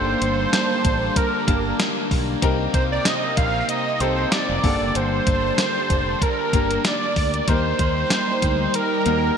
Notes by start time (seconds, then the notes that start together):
Already playing: G1 G2 D3 G3 A#3 D4 G4 A4 C5 A5
0.21 G1, closed hi-hat
0.52 G2 D3 G3, snare, closed hi-hat, tambourine
0.85 A1, kick, closed hi-hat
1.14 G2 A#4, kick, closed hi-hat
1.18 D3 G3
1.47 G1 A#3 D4 G4 A5, kick, closed hi-hat
1.79 snare, closed hi-hat, tambourine
2.11 B1, kick, open hi-hat
2.42 C2 C3 G3 C4 D#4 G4 A#4, kick, closed hi-hat
2.74 C2 C5, kick, closed hi-hat
2.92 D5
3.05 C3 G3 C4 D#5, snare, closed hi-hat, tambourine
3.37 A#1 F5, kick, closed hi-hat
3.67 C3 G3 C4 D#5, closed hi-hat
4.00 C2 C4 D#4 G4 A4 C5, closed hi-hat
4.32 D5, snare, closed hi-hat, tambourine
4.49 F1
4.63 G1 G2 D3 G3 A#3 D4 G4 A4 A5, kick, open hi-hat
4.81 F#1
4.95 G1 C5, closed hi-hat
5.27 G1, kick, closed hi-hat
5.57 G2 D3 G3, snare, closed hi-hat, tambourine
5.90 F1, kick, closed hi-hat
6.19 G2 A#4, kick, closed hi-hat
6.24 D3 G3
6.53 G1 A#3 D4 G4 A#4, kick, closed hi-hat
6.71 closed hi-hat
6.85 D5, snare, closed hi-hat, tambourine
7.16 D2, kick, open hi-hat
7.34 closed hi-hat
7.47 D#2 D#3 G3 A#3 D#4 G4 A#4 C5, kick, closed hi-hat
7.79 D#2, kick, closed hi-hat
8.10 A#3 D#4, snare, closed hi-hat, tambourine
8.42 D2, kick, closed hi-hat
8.72 D#3 A#4, closed hi-hat
8.76 A#3 D#4
9.05 D#2 A#3 D#4 F#4 A#4, closed hi-hat
9.12 G4